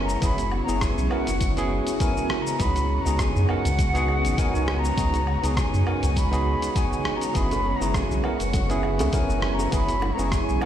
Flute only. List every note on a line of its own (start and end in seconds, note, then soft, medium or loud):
0.04 0.23 A#5 loud
0.23 0.60 B5 loud
0.63 0.84 A#5 medium
0.83 1.14 G#5 medium
1.12 1.74 F#5 medium
2.02 2.43 G#5 loud
2.41 2.62 A#5 loud
2.61 3.02 B5 loud
3.01 3.22 A#5 loud
3.20 3.52 G#5 loud
3.50 4.40 F#5 loud
4.39 4.80 G#5 loud
4.79 5.59 A#5 loud
5.57 6.18 G#5 loud
6.17 6.77 B5 loud
6.76 7.17 G#5 loud
7.16 7.37 A#5 loud
7.36 7.77 B5 loud
7.75 7.96 A#5 medium
7.95 8.26 G#5 medium
8.24 8.87 F#5 medium
9.14 9.55 G#5 loud
9.54 9.73 A#5 medium
9.73 10.14 B5 loud
10.13 10.32 A#5 medium
10.33 10.64 G#5 medium